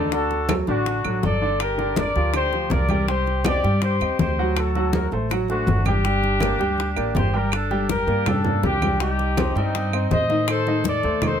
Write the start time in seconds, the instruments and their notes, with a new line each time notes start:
Already playing: upright bass D2, horn section D#4 A4
0.12 grand piano D3 D4 D5, horn section F#4 A4, high bongo, high conga
0.31 high bongo, high conga
0.49 grand piano F#3 F#4 A4, high bongo, high conga, claves
0.67 upright bass A1, grand piano D3 D4 D5, horn section D4 F#4, high bongo, high conga
0.86 high bongo, high conga
1.05 upright bass A1, grand piano F#3 F#4 A4, high bongo, high conga, claves
1.23 upright bass G1, horn section A4 D5, high bongo, low bongo, high conga
1.42 grand piano D3 D4 D5
1.60 horn section G4 A#4, high bongo, high conga, claves
1.78 grand piano D3 D4 D5, high bongo, high conga
1.96 horn section A#4 D5, high bongo, high conga
2.15 upright bass D2, grand piano F3 F4 G4, high bongo, high conga
2.34 grand piano D3 D4 D5, horn section G4 C5, high bongo, high conga, claves
2.52 grand piano F3 F4 G4, high bongo, high conga
2.70 upright bass C2, horn section A#4 D5, high bongo, low bongo, high conga
2.89 grand piano G3 G4 G5, high conga, claves
3.08 grand piano G3 G4 G5, horn section G4 C5, high bongo, high conga
3.26 high bongo, high conga
3.45 grand piano C4 C5 D#5, horn section G4 D5, high bongo, high conga, claves
3.64 upright bass G2, grand piano G3 G4 G5, high bongo, high conga
3.81 horn section G4 C5, high bongo, high conga
4.00 upright bass D#2, grand piano C4 C5 D#5, high bongo, high conga, claves
4.19 upright bass D2, horn section G4 C5, high bongo, low bongo, high conga
4.39 grand piano F#3 F#4 F#5
4.56 horn section F#4 A4, high bongo, high conga, claves
4.75 grand piano F#3 F#4 F#5, high bongo, high conga
4.93 horn section F#4 A#4, high bongo, high conga
5.12 upright bass A1, grand piano A3 A4 C5, high bongo, high conga
5.30 grand piano F#3 F#4 F#5, high bongo, high conga, claves
5.48 grand piano A3 A4 C5, horn section D4 F#4, high bongo, high conga
5.67 upright bass G1, high bongo, low bongo, high conga
5.86 grand piano G3 G4 G5, horn section D4 G4, high conga, claves
6.04 grand piano G3 G4 G5, high bongo, high conga
6.23 high bongo, high conga
6.40 grand piano A#3 A#4 D5, high bongo, high conga, claves
6.59 upright bass D2, grand piano G3 G4 G5, high bongo, high conga
6.78 high bongo, high conga
6.96 upright bass A1, grand piano A#3 A#4 D5, high bongo, high conga, claves
7.15 upright bass G1, horn section G4 C5, high bongo, low bongo, high conga
7.33 grand piano G3 G4 G5, horn section G4 A#4
7.52 horn section D4 A4, high bongo, high conga, claves
7.71 grand piano G3 G4 G5, high bongo, high conga
7.89 horn section G4 A#4, high bongo, high conga
8.07 upright bass G2, grand piano A#3 A#4 D5, high bongo, high conga
8.26 grand piano G3 G4 G5, horn section D4 A4, high bongo, high conga, low conga, claves
8.44 grand piano A#3 A#4 D5, high conga, low conga
8.63 upright bass C2, horn section D4 G4, high bongo, low bongo, high conga
8.82 grand piano G3 G4 G5, high bongo, high conga, claves
9.00 grand piano G3 G4 G5, horn section D#4 G4, high bongo, high conga
9.19 high bongo, high conga
9.37 grand piano C4 C5 D#5, high bongo, high conga, claves
9.55 upright bass G2, grand piano G3 G4 G5, horn section C4 D#4, high bongo, high conga
9.75 high bongo, high conga
9.93 grand piano C4 C5 D#5, high conga, claves
10.11 upright bass A2, horn section C5 D#5, high bongo, low bongo, high conga
10.30 grand piano D#3 D#4 D#5, high bongo, high conga
10.48 horn section A4 C5, high bongo, high conga, claves
10.67 grand piano D#3 D#4 D#5, high bongo, high conga
10.84 horn section A4 D5, high bongo, high conga
11.03 upright bass D#2, grand piano A3 A4 C5, high bongo, high conga
11.22 grand piano D#3 D#4 D#5, horn section A4 C5, high bongo, high conga, low conga, claves